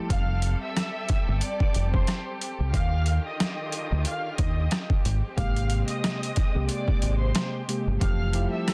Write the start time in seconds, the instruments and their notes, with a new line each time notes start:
Already playing: string section G3 C4 G4 A4
0.10 fingered electric bass F1, violin section F5 F6, kick, closed hi-hat
0.42 closed hi-hat
0.62 violin section E5 E6
0.77 cross-stick, snare, closed hi-hat
1.09 kick, snare, closed hi-hat
1.28 fingered electric bass G1
1.40 violin section D5 D6, closed hi-hat
1.60 kick
1.74 fingered electric bass F1, closed hi-hat
1.93 violin section C5 C6, kick
2.07 cross-stick, snare, closed hi-hat
2.41 closed hi-hat
2.60 fingered electric bass C2
2.73 fingered electric bass D#2, string section D3 D#3 F4, violin section F5 F6, kick, closed hi-hat
3.06 closed hi-hat
3.26 violin section D#5 D#6
3.40 cross-stick, snare, closed hi-hat
3.72 closed hi-hat
3.92 fingered electric bass D2
4.05 violin section F5 F6, closed hi-hat
4.37 fingered electric bass D#2, violin section D#5 D#6, kick, closed hi-hat
4.71 cross-stick, snare, closed hi-hat
4.90 kick
5.05 fingered electric bass G#1, string section G#3 C4, closed hi-hat
5.37 fingered electric bass G#1, tine electric piano C3 G#3 A#3 G4, violin section F5 F6, kick, closed hi-hat
5.56 closed hi-hat
5.70 closed hi-hat
5.88 violin section D#5 D#6, closed hi-hat
6.04 cross-stick, snare, closed hi-hat
6.23 closed hi-hat
6.36 kick, snare, closed hi-hat
6.55 fingered electric bass C2, tine electric piano C3 G#3 A#3 G4
6.69 violin section D5 D6, closed hi-hat
6.88 kick
7.02 fingered electric bass G#1, closed hi-hat
7.20 violin section C5 C6
7.35 cross-stick, snare, closed hi-hat
7.68 tine electric piano C3 G#3 A#3 G4, closed hi-hat
7.88 fingered electric bass G1
8.01 fingered electric bass F1, tine electric piano E3 F3 A3 G4, string section G3 C4 G4 A4, violin section F5 F6, kick, closed hi-hat
8.33 tine electric piano F3 A3 E4 G4, closed hi-hat
8.52 violin section E5 E6
8.68 cross-stick, snare, closed hi-hat